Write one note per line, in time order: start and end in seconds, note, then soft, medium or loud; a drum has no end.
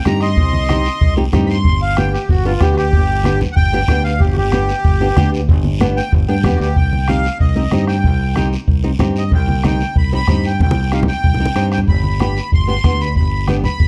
0.05 0.38 G2 medium
0.05 0.28 C4 medium
0.05 0.28 D#4 medium
0.05 0.29 G4 medium
0.05 0.22 A#5 loud
0.05 bombo rim medium
0.05 high conga medium
0.05 short guiro medium
0.21 1.14 D#5 medium
0.21 1.15 C6 loud
0.21 bombo rim medium
0.21 short guiro medium
0.36 0.88 C2 loud
0.36 bombo low medium
0.36 long guiro medium
0.53 high conga medium
0.69 0.86 C4 medium
0.69 0.87 D#4 medium
0.69 0.87 G4 medium
0.69 bombo rim medium
0.69 high conga medium
0.69 short guiro medium
0.85 short guiro medium
1.01 1.27 C2 medium
1.01 bombo low medium
1.01 long guiro medium
1.17 1.23 C4 medium
1.17 1.23 D#4 medium
1.17 1.23 G4 medium
1.32 1.66 G2 medium
1.32 1.56 C4 medium
1.32 1.56 D#4 medium
1.32 1.56 G4 loud
1.32 bombo low medium
1.32 bombo rim medium
1.32 high conga medium
1.32 low conga medium
1.32 short guiro medium
1.46 1.48 B5 medium
1.46 short guiro medium
1.50 1.81 C6 loud
1.64 2.16 G1 medium
1.64 bombo low medium
1.64 long guiro medium
1.82 1.97 F5 loud
1.97 2.14 B3 medium
1.97 2.14 D4 medium
1.97 2.15 G4 medium
1.97 2.13 G5 medium
1.97 bombo rim loud
1.97 high conga medium
1.97 short guiro medium
2.13 2.29 G4 medium
2.13 short guiro medium
2.29 2.55 G1 loud
2.29 2.45 F#4 medium
2.29 bombo low medium
2.29 long guiro medium
2.45 2.51 B3 medium
2.45 2.51 D4 medium
2.45 2.61 F4 loud
2.45 2.51 G4 medium
2.61 2.94 D2 medium
2.61 2.84 B3 medium
2.61 2.84 D4 medium
2.61 2.76 G4 medium
2.61 2.84 G4 medium
2.61 bombo low medium
2.61 bombo rim medium
2.61 high conga medium
2.61 short guiro medium
2.72 2.75 F#4 medium
2.77 3.39 G4 loud
2.77 bombo rim medium
2.77 short guiro medium
2.93 3.44 G1 loud
2.93 bombo low medium
2.93 long guiro medium
3.24 3.42 B3 medium
3.24 3.42 D4 medium
3.24 3.42 G4 medium
3.24 bombo rim loud
3.24 high conga medium
3.24 short guiro medium
3.41 low conga medium
3.41 short guiro medium
3.52 3.55 F#5 medium
3.52 4.03 G5 loud
3.56 3.82 G1 medium
3.56 bombo low medium
3.56 long guiro medium
3.73 3.79 B3 medium
3.73 3.79 D4 medium
3.73 3.79 G4 medium
3.88 4.22 D2 loud
3.88 4.12 B3 medium
3.88 4.12 D4 medium
3.88 4.12 G4 medium
3.88 bombo rim medium
3.88 high conga medium
3.88 low conga medium
3.88 short guiro medium
4.04 4.20 F5 loud
4.04 short guiro medium
4.20 4.72 G1 loud
4.20 4.36 G4 medium
4.20 bombo low medium
4.20 long guiro medium
4.33 4.35 F#4 medium
4.33 high conga medium
4.37 5.30 G4 loud
4.52 4.70 B3 medium
4.52 4.70 D4 medium
4.52 4.70 G4 medium
4.52 bombo rim loud
4.52 high conga medium
4.52 short guiro medium
4.69 short guiro medium
4.84 5.10 G1 loud
4.84 bombo low medium
4.84 long guiro medium
5.00 5.06 B3 medium
5.00 5.07 D4 medium
5.00 5.07 G4 medium
5.16 5.50 D2 medium
5.16 5.39 B3 medium
5.16 5.39 D4 medium
5.16 5.40 G4 loud
5.16 bombo low medium
5.16 bombo rim medium
5.16 high conga medium
5.16 short guiro medium
5.34 short guiro medium
5.49 6.00 G1 loud
5.49 bombo low medium
5.49 long guiro medium
5.64 high conga medium
5.80 5.98 B3 medium
5.80 5.98 D4 medium
5.80 5.98 G4 loud
5.80 bombo rim medium
5.80 high conga medium
5.80 short guiro medium
5.97 6.12 G5 loud
5.97 short guiro medium
6.12 6.25 G1 medium
6.12 bombo low medium
6.12 long guiro medium
6.28 6.43 G2 medium
6.28 6.34 B3 medium
6.28 6.34 D4 medium
6.28 6.35 G4 medium
6.28 6.44 G5 medium
6.44 6.59 F2 medium
6.44 6.67 B3 medium
6.44 6.67 D4 medium
6.44 6.59 G4 loud
6.44 6.68 G4 medium
6.44 bombo low medium
6.44 bombo rim medium
6.44 high conga medium
6.44 low conga medium
6.44 short guiro medium
6.56 6.75 D2 medium
6.56 6.59 F#4 medium
6.61 6.76 G4 loud
6.61 short guiro medium
6.76 7.28 C2 medium
6.76 7.09 G5 medium
6.76 bombo low medium
6.76 long guiro medium
6.93 high conga medium
7.08 7.25 C4 medium
7.08 7.25 D#4 medium
7.08 7.26 G4 medium
7.08 7.38 F5 loud
7.08 bombo rim medium
7.08 high conga medium
7.08 short guiro medium
7.25 short guiro medium
7.40 7.66 C2 medium
7.40 7.85 D#5 medium
7.40 bombo low medium
7.40 long guiro medium
7.56 7.62 C4 medium
7.56 7.62 D#4 medium
7.56 7.62 G4 medium
7.71 8.05 G2 medium
7.71 7.95 C4 medium
7.71 7.95 D#4 medium
7.71 7.95 G4 medium
7.71 bombo rim medium
7.71 high conga medium
7.71 short guiro medium
7.87 8.48 G5 medium
7.87 bombo rim medium
7.87 short guiro medium
8.04 8.55 C2 medium
8.04 bombo low medium
8.04 long guiro medium
8.36 8.53 C4 medium
8.36 8.53 D#4 medium
8.36 8.53 G4 medium
8.36 bombo rim medium
8.36 high conga medium
8.36 short guiro medium
8.53 short guiro medium
8.68 8.94 C2 medium
8.68 bombo low medium
8.68 long guiro medium
8.84 8.90 C4 medium
8.84 8.90 D#4 medium
8.84 8.90 G4 medium
8.99 9.33 G2 medium
8.99 9.22 C4 medium
8.99 9.22 D#4 medium
8.99 9.23 G4 medium
8.99 bombo rim medium
8.99 high conga medium
8.99 low conga medium
8.99 short guiro medium
9.16 9.32 D#5 medium
9.16 short guiro medium
9.31 9.83 C2 loud
9.31 9.63 G5 medium
9.31 bombo low medium
9.31 long guiro medium
9.48 high conga medium
9.64 9.81 C4 medium
9.64 9.81 D#4 medium
9.64 9.81 G4 medium
9.64 9.96 G5 medium
9.64 bombo rim medium
9.64 high conga medium
9.64 short guiro medium
9.80 short guiro medium
9.96 10.21 C2 medium
9.96 10.12 B5 medium
9.96 bombo low medium
9.96 long guiro medium
10.12 10.18 C4 medium
10.12 10.18 D#4 medium
10.12 10.18 G4 medium
10.12 10.46 B5 loud
10.28 10.62 G2 medium
10.28 10.50 C4 medium
10.28 10.51 D#4 medium
10.28 10.51 G4 medium
10.28 bombo low medium
10.28 bombo rim medium
10.28 high conga medium
10.28 short guiro medium
10.44 10.60 G5 medium
10.44 short guiro medium
10.60 11.11 C2 medium
10.60 10.91 G5 medium
10.60 bombo low medium
10.60 high conga medium
10.60 long guiro medium
10.71 high conga loud
10.92 11.09 C4 medium
10.92 11.09 D#4 medium
10.92 11.09 G4 medium
10.92 11.00 F5 medium
10.92 bombo rim medium
10.92 short guiro medium
11.03 low conga loud
11.08 11.68 G5 loud
11.08 short guiro medium
11.24 11.50 C2 medium
11.24 bombo low medium
11.24 long guiro medium
11.34 low conga medium
11.40 11.46 C4 medium
11.40 11.46 D#4 medium
11.40 11.46 G4 medium
11.46 low conga medium
11.55 11.89 G2 medium
11.55 11.78 C4 medium
11.55 11.78 D#4 medium
11.55 11.79 G4 medium
11.55 bombo rim medium
11.55 short guiro medium
11.72 11.80 G5 medium
11.72 bombo rim medium
11.72 short guiro medium
11.78 low conga medium
11.88 12.39 G1 medium
11.88 12.20 B5 medium
11.88 bombo low medium
11.88 long guiro medium
12.03 high conga medium
12.20 12.37 B3 medium
12.20 12.37 D4 medium
12.20 12.37 G4 medium
12.20 12.51 B5 loud
12.20 bombo rim medium
12.20 high conga medium
12.20 short guiro medium
12.37 short guiro medium
12.52 12.78 G1 medium
12.52 12.67 C6 loud
12.52 bombo low medium
12.52 long guiro medium
12.67 12.73 B3 medium
12.67 12.73 D4 medium
12.67 12.74 G4 medium
12.67 13.01 C6 loud
12.84 13.17 D2 medium
12.84 13.06 B3 medium
12.84 13.07 D4 medium
12.84 13.07 G4 medium
12.84 bombo low medium
12.84 bombo rim medium
12.84 high conga medium
12.84 short guiro medium
13.01 13.15 B5 loud
13.01 short guiro medium
13.16 13.67 G1 medium
13.16 13.49 B5 medium
13.16 bombo low medium
13.16 long guiro medium
13.47 13.65 B3 medium
13.47 13.65 D4 medium
13.47 13.65 G4 medium
13.47 13.55 G5 medium
13.47 bombo rim medium
13.47 high conga medium
13.47 short guiro medium
13.64 13.88 B5 loud
13.64 low conga medium
13.64 short guiro medium
13.80 13.88 G1 medium
13.80 bombo low medium
13.80 long guiro medium